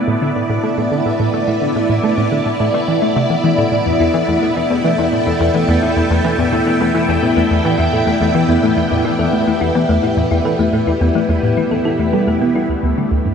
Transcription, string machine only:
0, 0, Header, 1, 2, 480
1, 0, Start_track
1, 0, Tempo, 560748
1, 1266, Time_signature, 4, 2, 24, 8
1, 11423, End_track
2, 0, Start_track
2, 0, Title_t, "String machine"
2, 0, Program_c, 0, 50
2, 0, Note_on_c, 0, 59, 79
2, 0, Note_on_c, 0, 64, 90
2, 0, Note_on_c, 0, 69, 92
2, 0, Note_on_c, 0, 74, 80
2, 0, Note_on_c, 0, 79, 74
2, 3186, Note_off_c, 0, 69, 0
2, 3187, Note_off_c, 0, 79, 0
2, 3539, Note_on_c, 0, 69, 91
2, 3966, Note_on_c, 0, 79, 88
2, 8078, Note_on_c, 0, 67, 94
2, 8221, Note_off_c, 0, 69, 0
2, 10865, Note_on_c, 0, 57, 93
2, 10866, Note_off_c, 0, 59, 0
2, 10866, Note_off_c, 0, 64, 0
2, 10866, Note_off_c, 0, 79, 0
2, 11138, Note_on_c, 0, 62, 81
2, 11423, Note_off_c, 0, 57, 0
2, 11423, Note_off_c, 0, 62, 0
2, 11423, Note_off_c, 0, 67, 0
2, 11423, Note_off_c, 0, 74, 0
2, 11423, End_track
0, 0, End_of_file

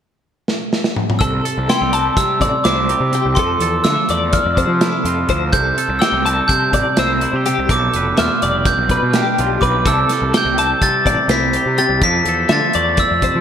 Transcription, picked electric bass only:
0, 0, Header, 1, 2, 480
1, 0, Start_track
1, 0, Key_signature, 0, "major"
1, 0, Tempo, 481155
1, 1202, Time_signature, 9, 3, 24, 8
1, 13376, End_track
2, 0, Start_track
2, 0, Title_t, "Picked electric bass"
2, 0, Program_c, 0, 34
2, 1204, Note_on_c, 0, 36, 84
2, 1385, Note_off_c, 0, 36, 0
2, 1573, Note_on_c, 0, 36, 78
2, 1660, Note_off_c, 0, 36, 0
2, 1814, Note_on_c, 0, 36, 82
2, 2083, Note_off_c, 0, 36, 0
2, 2165, Note_on_c, 0, 48, 78
2, 2398, Note_on_c, 0, 33, 76
2, 2413, Note_off_c, 0, 48, 0
2, 2491, Note_off_c, 0, 33, 0
2, 2649, Note_on_c, 0, 36, 89
2, 2920, Note_off_c, 0, 36, 0
2, 2995, Note_on_c, 0, 48, 85
2, 3181, Note_off_c, 0, 48, 0
2, 3246, Note_on_c, 0, 36, 79
2, 3337, Note_off_c, 0, 36, 0
2, 3362, Note_on_c, 0, 41, 98
2, 3545, Note_off_c, 0, 41, 0
2, 3591, Note_on_c, 0, 40, 78
2, 3779, Note_off_c, 0, 40, 0
2, 3846, Note_on_c, 0, 50, 99
2, 3937, Note_off_c, 0, 50, 0
2, 4084, Note_on_c, 0, 40, 70
2, 4357, Note_off_c, 0, 40, 0
2, 4445, Note_on_c, 0, 41, 75
2, 4627, Note_off_c, 0, 41, 0
2, 4661, Note_on_c, 0, 53, 84
2, 4852, Note_off_c, 0, 53, 0
2, 5035, Note_on_c, 0, 41, 81
2, 5220, Note_off_c, 0, 41, 0
2, 5279, Note_on_c, 0, 38, 85
2, 5515, Note_off_c, 0, 38, 0
2, 5515, Note_on_c, 0, 36, 93
2, 5699, Note_off_c, 0, 36, 0
2, 5874, Note_on_c, 0, 36, 75
2, 5968, Note_off_c, 0, 36, 0
2, 6110, Note_on_c, 0, 36, 79
2, 6387, Note_off_c, 0, 36, 0
2, 6472, Note_on_c, 0, 48, 81
2, 6710, Note_on_c, 0, 33, 81
2, 6725, Note_off_c, 0, 48, 0
2, 6804, Note_off_c, 0, 33, 0
2, 6966, Note_on_c, 0, 36, 91
2, 7235, Note_off_c, 0, 36, 0
2, 7315, Note_on_c, 0, 48, 87
2, 7497, Note_off_c, 0, 48, 0
2, 7568, Note_on_c, 0, 36, 77
2, 7655, Note_off_c, 0, 36, 0
2, 7675, Note_on_c, 0, 35, 104
2, 7857, Note_off_c, 0, 35, 0
2, 7926, Note_on_c, 0, 29, 80
2, 8103, Note_off_c, 0, 29, 0
2, 8174, Note_on_c, 0, 40, 96
2, 8258, Note_off_c, 0, 40, 0
2, 8409, Note_on_c, 0, 29, 75
2, 8675, Note_off_c, 0, 29, 0
2, 8752, Note_on_c, 0, 35, 71
2, 8934, Note_off_c, 0, 35, 0
2, 9003, Note_on_c, 0, 47, 76
2, 9181, Note_off_c, 0, 47, 0
2, 9368, Note_on_c, 0, 35, 82
2, 9544, Note_off_c, 0, 35, 0
2, 9592, Note_on_c, 0, 35, 81
2, 9829, Note_off_c, 0, 35, 0
2, 9829, Note_on_c, 0, 36, 83
2, 10011, Note_off_c, 0, 36, 0
2, 10194, Note_on_c, 0, 36, 74
2, 10284, Note_off_c, 0, 36, 0
2, 10427, Note_on_c, 0, 36, 84
2, 10700, Note_off_c, 0, 36, 0
2, 10794, Note_on_c, 0, 48, 80
2, 11029, Note_on_c, 0, 33, 78
2, 11044, Note_off_c, 0, 48, 0
2, 11121, Note_off_c, 0, 33, 0
2, 11255, Note_on_c, 0, 36, 86
2, 11534, Note_off_c, 0, 36, 0
2, 11630, Note_on_c, 0, 48, 83
2, 11813, Note_off_c, 0, 48, 0
2, 11864, Note_on_c, 0, 36, 73
2, 11958, Note_off_c, 0, 36, 0
2, 11988, Note_on_c, 0, 41, 100
2, 12172, Note_off_c, 0, 41, 0
2, 12226, Note_on_c, 0, 40, 79
2, 12411, Note_off_c, 0, 40, 0
2, 12469, Note_on_c, 0, 50, 96
2, 12562, Note_off_c, 0, 50, 0
2, 12722, Note_on_c, 0, 40, 76
2, 12993, Note_off_c, 0, 40, 0
2, 13078, Note_on_c, 0, 41, 73
2, 13260, Note_off_c, 0, 41, 0
2, 13322, Note_on_c, 0, 53, 83
2, 13376, Note_off_c, 0, 53, 0
2, 13376, End_track
0, 0, End_of_file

